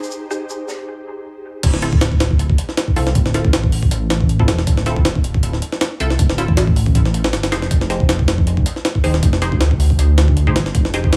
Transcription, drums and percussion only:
0.03 shaker medium
0.11 shaker medium
0.31 shaker medium
0.50 shaker medium
0.68 snare soft
0.68 shaker medium
1.63 kick loud
1.63 closed hi-hat medium
1.63 crash medium
1.74 snare medium
1.82 snare soft
1.82 closed hi-hat medium
1.93 kick loud
2.01 snare loud
2.01 closed hi-hat medium
2.12 kick medium
2.20 snare loud
2.20 closed hi-hat medium
2.31 kick medium
2.39 closed hi-hat medium
2.50 kick medium
2.58 closed hi-hat medium
2.69 snare soft
2.77 snare loud
2.77 closed hi-hat medium
2.88 kick medium
2.96 open hi-hat medium
3.07 snare medium
3.15 kick loud
3.15 closed hi-hat medium
3.26 snare medium
3.34 snare soft
3.34 closed hi-hat medium
3.45 kick loud
3.53 snare loud
3.53 closed hi-hat medium
3.64 kick medium
3.72 open hi-hat medium
3.83 kick loud
3.91 closed hi-hat medium
4.10 snare loud
4.10 closed hi-hat medium
4.21 kick medium
4.29 closed hi-hat medium
4.40 kick medium
4.48 snare loud
4.48 closed hi-hat medium
4.59 snare medium
4.67 kick loud
4.67 closed hi-hat medium
4.77 snare medium
4.86 snare soft
4.86 closed hi-hat medium
4.96 kick loud
5.05 snare loud
5.05 closed hi-hat medium
5.15 kick loud
5.24 closed hi-hat medium
5.34 kick loud
5.43 closed hi-hat medium
5.53 snare soft
5.62 closed hi-hat medium
5.72 snare medium
5.81 snare loud
5.81 closed hi-hat medium
6.00 closed hi-hat medium
6.10 snare medium
6.19 kick loud
6.19 closed hi-hat medium
6.30 snare medium
6.38 snare soft
6.38 closed hi-hat medium
6.48 kick loud
6.57 snare loud
6.57 closed hi-hat medium
6.67 kick medium
6.76 open hi-hat medium
6.86 kick loud
6.95 kick loud
6.95 closed hi-hat medium
7.05 snare soft
7.14 closed hi-hat medium
7.24 snare loud
7.33 snare loud
7.33 closed hi-hat medium
7.43 snare loud
7.43 closed hi-hat medium
7.52 snare loud
7.52 closed hi-hat medium
7.62 snare medium
7.71 kick loud
7.71 closed hi-hat medium
7.81 snare medium
7.90 snare soft
7.90 closed hi-hat medium
8.00 kick loud
8.09 snare loud
8.09 closed hi-hat medium
8.19 kick medium
8.28 snare loud
8.28 closed hi-hat medium
8.38 kick medium
8.47 closed hi-hat medium
8.57 kick medium
8.66 closed hi-hat medium
8.76 snare soft
8.85 snare loud
8.85 closed hi-hat medium
8.95 kick medium
9.04 open hi-hat medium
9.14 snare medium
9.23 kick loud
9.23 closed hi-hat medium
9.33 snare medium
9.42 snare soft
9.42 closed hi-hat medium
9.52 kick loud
9.61 snare loud
9.61 closed hi-hat medium
9.71 kick loud
9.80 open hi-hat medium
9.90 kick medium
9.99 closed hi-hat medium
10.18 snare loud
10.18 closed hi-hat medium
10.28 kick medium
10.37 closed hi-hat medium
10.47 kick medium
10.56 snare loud
10.56 closed hi-hat medium
10.66 snare medium
10.75 kick loud
10.75 closed hi-hat medium
10.85 snare medium
10.94 snare soft
10.94 closed hi-hat medium
11.04 kick loud
11.13 snare loud
11.13 closed hi-hat medium

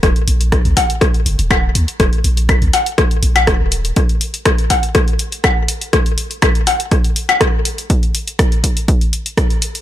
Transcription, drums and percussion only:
0.03 kick loud
0.03 cross-stick medium
0.03 closed hi-hat medium
0.16 closed hi-hat soft
0.28 open hi-hat loud
0.41 closed hi-hat soft
0.52 kick loud
0.52 cross-stick soft
0.52 cross-stick medium
0.52 closed hi-hat soft
0.65 closed hi-hat soft
0.77 kick medium
0.77 open hi-hat loud
0.77 percussion blips medium
0.90 closed hi-hat soft
1.01 kick loud
1.01 cross-stick medium
1.01 closed hi-hat medium
1.14 closed hi-hat soft
1.26 open hi-hat loud
1.39 closed hi-hat soft
1.51 kick loud
1.51 cross-stick medium
1.51 closed hi-hat medium
1.51 percussion blips medium
1.51 claves medium
1.75 open hi-hat loud
1.88 closed hi-hat soft
2.00 kick loud
2.00 cross-stick medium
2.00 closed hi-hat medium
2.13 closed hi-hat soft
2.24 open hi-hat loud
2.37 closed hi-hat soft
2.49 kick loud
2.49 cross-stick medium
2.49 cross-stick soft
2.49 closed hi-hat medium
2.49 claves medium
2.62 closed hi-hat soft
2.73 open hi-hat medium
2.73 percussion blips medium
2.86 closed hi-hat soft
2.98 kick loud
2.98 cross-stick medium
2.98 closed hi-hat medium
3.11 closed hi-hat soft
3.23 open hi-hat loud
3.36 closed hi-hat soft
3.36 percussion blips medium
3.36 claves medium
3.47 kick loud
3.47 cross-stick medium
3.47 closed hi-hat medium
3.72 open hi-hat medium
3.85 closed hi-hat soft
3.96 kick loud
3.96 cross-stick soft
3.96 closed hi-hat medium
4.09 closed hi-hat soft
4.21 open hi-hat medium
4.34 closed hi-hat soft
4.46 kick loud
4.46 cross-stick medium
4.46 closed hi-hat medium
4.58 closed hi-hat soft
4.70 kick medium
4.70 open hi-hat medium
4.70 percussion blips medium
4.83 closed hi-hat soft
4.95 kick loud
4.95 cross-stick medium
4.95 closed hi-hat medium
5.08 closed hi-hat soft
5.19 open hi-hat medium
5.32 closed hi-hat soft
5.44 kick loud
5.44 cross-stick medium
5.44 cross-stick soft
5.44 closed hi-hat medium
5.44 percussion blips medium
5.44 claves medium
5.68 open hi-hat medium
5.81 closed hi-hat soft
5.93 kick loud
5.93 cross-stick medium
5.93 closed hi-hat medium
6.06 closed hi-hat soft
6.18 open hi-hat medium
6.31 closed hi-hat soft
6.42 kick loud
6.42 cross-stick medium
6.42 closed hi-hat medium
6.42 claves medium
6.55 closed hi-hat soft
6.67 open hi-hat medium
6.67 percussion blips medium
6.80 closed hi-hat soft
6.91 kick loud
6.91 cross-stick soft
6.91 closed hi-hat medium
7.04 closed hi-hat soft
7.16 open hi-hat medium
7.29 closed hi-hat soft
7.29 percussion blips medium
7.29 claves medium
7.41 kick loud
7.41 cross-stick medium
7.41 closed hi-hat medium
7.65 open hi-hat medium
7.78 closed hi-hat soft
7.90 kick loud
7.90 closed hi-hat medium
8.03 closed hi-hat soft
8.15 open hi-hat medium
8.28 closed hi-hat soft
8.39 kick loud
8.39 cross-stick loud
8.39 closed hi-hat medium
8.52 closed hi-hat soft
8.64 kick medium
8.64 open hi-hat medium
8.77 closed hi-hat soft
8.88 kick loud
8.88 closed hi-hat medium
9.01 closed hi-hat soft
9.13 open hi-hat medium
9.26 closed hi-hat soft
9.37 kick loud
9.37 cross-stick loud
9.37 closed hi-hat medium
9.50 closed hi-hat soft
9.62 open hi-hat medium
9.75 closed hi-hat soft

